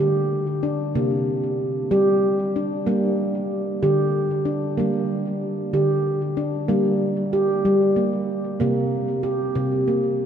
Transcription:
0.00 D3 G4
0.63 D4
0.95 C3 A#3
1.91 G3 G4
2.56 D4
2.87 G3 A#3
3.83 D3 G4
4.45 D4
4.77 G3 A#3
5.73 D3 G4
6.37 D4
6.68 G3 A#3
7.33 G4
7.65 G3
7.96 A#3
8.60 C3 A#3
9.23 G4
9.55 C3
9.88 A#3

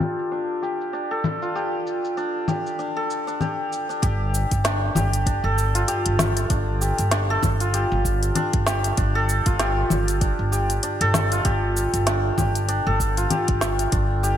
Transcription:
Already playing: D4 F4 G4 A4
0.00 low conga, shaker
0.19 shaker
0.32 D4, shaker
0.62 G4, shaker
0.81 shaker
0.93 D4, shaker
1.11 A4
1.24 low conga, shaker
1.42 F4, shaker
1.55 G4, shaker
1.87 shaker
2.05 shaker
2.17 D4, shaker
2.48 G4, low conga, shaker
2.67 shaker
2.79 D4, shaker
2.96 A4
3.10 shaker
3.27 D4, shaker
3.41 G4, low conga, shaker
3.72 shaker
3.89 D4, shaker
4.02 G1 G4, kick, closed hi-hat, shaker
4.34 shaker
4.51 G1, kick, closed hi-hat, shaker
4.64 D4, snare, closed hi-hat, shaker
4.95 G1 G4, low conga, shaker
5.13 closed hi-hat, shaker
5.26 D4, kick, closed hi-hat, shaker
5.44 G1 A4
5.58 shaker
5.75 F4, closed hi-hat, shaker
5.88 G4, closed hi-hat, shaker
6.06 G1, closed hi-hat
6.19 snare, low conga, shaker
6.37 closed hi-hat, shaker
6.50 G1 D4, kick, closed hi-hat, shaker
6.81 G4, shaker
6.98 G1, closed hi-hat, shaker
7.11 D4, snare, closed hi-hat, shaker
7.30 A4
7.43 G1, kick, low conga, shaker
7.60 F4, closed hi-hat, shaker
7.74 G4, closed hi-hat, shaker
7.92 G1
8.05 kick, shaker
8.23 closed hi-hat, shaker
8.36 D4, closed hi-hat, low conga, shaker
8.53 G1, kick, closed hi-hat
8.66 G4, snare, shaker
8.84 closed hi-hat, shaker
8.97 G1 D4, kick, closed hi-hat, shaker
9.15 A4
9.29 shaker
9.46 G1 F4, kick, closed hi-hat, shaker
9.59 G4, snare, closed hi-hat, shaker
9.90 G1, low conga, shaker
10.08 closed hi-hat, shaker
10.21 D4, kick, closed hi-hat, shaker
10.39 G1
10.52 G4, shaker
10.70 closed hi-hat, shaker
10.83 D4, closed hi-hat, shaker
11.01 G1 A4, closed hi-hat
11.14 snare, low conga, shaker
11.32 F4, closed hi-hat, shaker
11.45 G1 G4, kick, closed hi-hat, shaker
11.77 shaker
11.93 G1, closed hi-hat, shaker
12.06 D4, snare, closed hi-hat, shaker
12.38 G1 G4, kick, low conga, shaker
12.55 closed hi-hat, shaker
12.69 D4, closed hi-hat, shaker
12.87 G1 A4
13.00 kick, shaker
13.17 F4, closed hi-hat, shaker
13.30 G4, closed hi-hat, low conga, shaker
13.48 G1, kick, closed hi-hat
13.61 snare, shaker
13.79 closed hi-hat, shaker
13.92 G1 D4, kick, closed hi-hat, shaker
14.23 G4, shaker

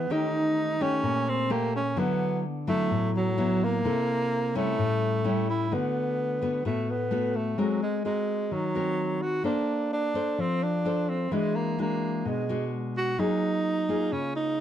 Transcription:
Already playing: B3
0.10 D#3 A3 C#4 D#4 G4
0.80 A3 C#4 G4
1.03 A#2
1.29 C4
1.50 A3 A#3 C#4 G4
1.76 C#4
1.96 D3 F#3 B3 E4
2.67 F#3 A3 B3 E4
2.91 A2
3.17 F#3
3.38 F#3 B3 E4
3.64 A#3
3.84 C3 A#3 E4 A4
4.55 G3 A3 C#4 E4
4.78 A2
5.24 G3 C#4 E4
5.50 E4
5.71 D3 A3 B3 F#4
6.42 A3 B3 F#4
6.65 A2 A3 B3 F#4
6.91 B3
7.11 A3 B3 F#4
7.36 A3
7.58 F#3 G#3 C4 F#4 A#4
7.83 G#3
8.05 G#3 C4 F#4 A#4
8.51 D#3 F#3
8.75 C4 F#4 A#4
9.22 F#4
9.43 A#3 D4 A4 C5
9.93 D4
10.14 D4 A4 C5
10.38 F3 C4
10.63 D4
10.85 D4 A4 C5
11.09 C4
11.31 E3 G#3 D4 F#4
11.56 A#3
11.79 G#3 A#3 D4 F#4
12.25 B2 G#3
12.49 G#3 D4 F#4
12.97 F#4
13.18 F#3 A#3 D#4 F4 G#4
13.89 A#3 F4 G#4
14.12 C#3 C#4
14.36 D#4

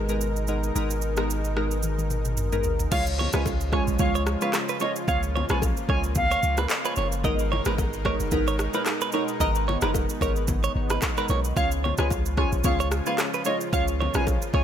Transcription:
Already playing: G#1 B2 G#3 D#4 A#4
0.09 G#3 B3 D#4 A#4, shaker
0.21 shaker
0.36 shaker
0.47 G#3 B3 D#4 A#4, shaker
0.63 shaker
0.75 G#1 G#3 B3 D#4 A#4, shaker
0.90 shaker
1.02 shaker
1.17 G#3 B3 D#4 A#4, cross-stick, shaker
1.30 shaker
1.44 shaker
1.56 G#3 B3 D#4 A#4, cross-stick
1.71 shaker
1.83 high tom, shaker
1.98 high tom, shaker
2.10 mid tom, shaker
2.25 mid tom, shaker
2.37 mid tom, shaker
2.52 G#3 B3 D#4 A#4, mid tom, shaker
2.63 floor tom, shaker
2.79 floor tom, shaker
2.91 C#2 C#3 F3 G#3 C#4 F4 C#5 F5, kick, crash, low conga, shaker
3.07 shaker
3.19 C#5, low bongo, low conga
3.33 C#2 G#3 C#4 F4 B4 C#5 G#5, cross-stick, low bongo, shaker
3.46 kick, high bongo, shaker
3.61 shaker
3.72 G#3 C#4 F4 C#5 G#5, kick, cross-stick, high bongo
3.87 B1, shaker
3.99 C#2 G#3 C#4 F4 C#5 F5, kick, low conga, shaker
4.15 C#5, shaker
4.27 cross-stick, shaker
4.41 G#3 C#4 F4 B4 C#5 F5, low bongo, shaker
4.53 cross-stick, clap, high bongo, shaker
4.69 B4, shaker
4.80 G#3 C#4 F4 C#5 D#5, high bongo, low bongo, shaker
4.96 shaker
5.08 C#2 G#3 A#3 C#4 F4 C#5 F5, kick, low conga, shaker
5.23 shaker
5.36 C#5, low bongo, low conga
5.49 B1 G#3 C#4 F4 B4 C#5 G#5, cross-stick, low bongo, shaker
5.62 kick, high bongo, shaker
5.77 shaker
5.89 C#2 G#3 C#4 F4 C#5 G#5, kick, high bongo
6.04 shaker
6.15 F5, kick, low conga, shaker
6.31 C#5, shaker
6.43 C#2, shaker
6.57 B4, cross-stick, low bongo, shaker
6.70 clap, high bongo, shaker
6.85 G#3 C#4 F4 B4 C#5, shaker
6.96 F#1 C#5, high bongo, low bongo, shaker
7.12 shaker
7.24 G#1 B2 G#3 B3 D#4 A#4 D#5, kick, low conga, shaker
7.39 shaker
7.52 C#5, low bongo, low conga
7.65 G#1 G#3 B3 D#4 A#4 B4, cross-stick, low bongo, shaker
7.78 kick, high bongo, shaker
7.93 shaker
8.05 G#3 B3 D#4 A#4 C#5, kick, cross-stick, high bongo
8.20 F#1, shaker
8.31 G#1 G#3 B3 D#4 A#4, kick, low conga, shaker
8.48 C#5, shaker
8.59 cross-stick, shaker
8.74 G#3 B3 D#4 A#4 B4, low bongo, shaker
8.86 cross-stick, clap, high bongo, shaker
9.01 B4, shaker
9.12 G#3 B3 D#4 A#4 C#5, high bongo, low bongo, shaker
9.28 shaker
9.40 G#1 G#3 B3 D#4 A#4 D#5, kick, low conga, shaker
9.55 shaker
9.68 C#5, low bongo, low conga
9.81 F#1 G#3 B3 D#4 A#4 B4, cross-stick, low bongo, shaker
9.94 kick, high bongo, shaker
10.09 shaker
10.21 G#1 G#3 B3 D#4 A#4 C#5, kick, high bongo, shaker
10.36 shaker
10.47 kick, low conga, shaker
10.64 C#5, shaker
10.75 G#1
10.90 B4, cross-stick, low bongo, shaker
11.02 kick, clap, high bongo, shaker
11.17 G#3 B3 D#4 A#4 B4, shaker
11.28 B1 C#5, high bongo, low bongo, shaker
11.44 shaker
11.56 C#2 C#3 F3 G#3 C#4 F4 C#5 F5, kick, low conga, shaker
11.71 shaker
11.84 C#5, low bongo, low conga
11.98 C#2 G#3 C#4 F4 B4 C#5 G#5, cross-stick, low bongo, shaker
12.10 kick, high bongo, shaker
12.26 shaker
12.37 G#3 C#4 F4 C#5 G#5, kick, cross-stick, high bongo
12.52 B1, shaker
12.64 C#2 G#3 C#4 F4 C#5 F5, kick, low conga, shaker
12.80 C#5, shaker
12.92 cross-stick, shaker
13.06 G#3 C#4 F4 B4 C#5 F5, low bongo, shaker
13.18 cross-stick, clap, high bongo, shaker
13.34 B4, shaker
13.45 G#3 C#4 F4 C#5 D#5, high bongo, low bongo, shaker
13.61 shaker
13.72 C#2 G#3 C#4 F4 A#4 C#5 F5, kick, low conga, shaker
13.88 shaker
14.01 C#5, low bongo, low conga
14.14 B1 G#3 C#4 F4 B4 C#5 G#5, cross-stick, low bongo, shaker
14.27 kick, high bongo, shaker
14.42 shaker
14.53 C#2 G#3 C#4 F4 C#5 G#5, kick, high bongo

